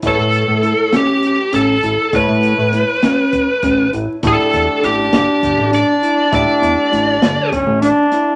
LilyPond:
<<
  \new Staff \with { instrumentName = "Lead electric guitar" } { \time 7/8 \key a \mixolydian \tempo 4 = 100 a'4. g'4 a'4 | b'2. r8 | a'4 g'8 g'4 d''4 | d''2 r4. | }
  \new Staff \with { instrumentName = "Grand piano" } { \time 7/8 \key a \mixolydian <a e' b' cis''>2.~ <a e' b' cis''>8 | <a e' b' cis''>2.~ <a e' b' cis''>8 | <a e' g' d''>2.~ <a e' g' d''>8 | <a e' g' e''>2.~ <a e' g' e''>8 | }
  \new Staff \with { instrumentName = "Tine electric piano" } { \time 7/8 \key a \mixolydian e'4 e'8 cis'4 cis'8 e'8 | e'4 e'8 cis'4 cis'8 e'8 | e'4 e'8 d'4 d'8 e'8 | e'4 e'8 d4 d'8 e'8 | }
  \new Staff \with { instrumentName = "Trombone" } { \time 7/8 \key a \mixolydian r2. r8 | r2. r8 | d'2.~ d'8~ | d'2 cis'8 d'4 | }
  \new Staff \with { instrumentName = "Analog synth bass" } { \clef bass \time 7/8 \key a \mixolydian a,,16 a,8 a,8 r4 r16 a,,8 a,,16 r16 | a,,16 a,8 a,8 r4 r16 a,,8 a,,16 r16 | a,,16 r16 e,16 r16 a,,8 g,,16 r16 g,,16 a,,8 r8. | a,,16 r16 e,16 r16 a,,8 g,,16 r16 g,,16 a,,8 r8. | }
  \new DrumStaff \with { instrumentName = "Drums" } \drummode { \time 7/8 <hh bd>8 hh8 hh8 <hh sn>8 hh8 hh8 hh8 | <hh bd>8 hh8 <hh sn>8 <hh sn>8 <hh bd>8 <hh bd>8 hh8 | <hh bd>8 <hh sn>8 hh8 <hh sn>8 <hh bd>8 hh8 hh8 | <hh bd>8 hh8 hh8 <hh sn>8 <hh bd>8 <hh sn>8 <hh sn>8 | }
>>